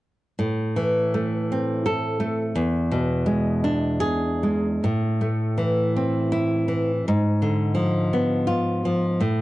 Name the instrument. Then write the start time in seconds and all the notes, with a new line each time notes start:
nylon-string guitar
0.39 A2
0.76 E3
1.14 A3
1.52 C4
1.86 A4
2.20 A3
2.56 E2
2.92 B2
3.26 G#3
3.64 D4
4.00 G#4
4.43 G#3
4.84 A2
5.21 A3
5.58 E3
5.97 C4
6.32 E4
6.68 E3
7.08 G#2
7.42 D3
7.75 F3
8.13 B3
8.47 F4
8.85 F3
9.21 A2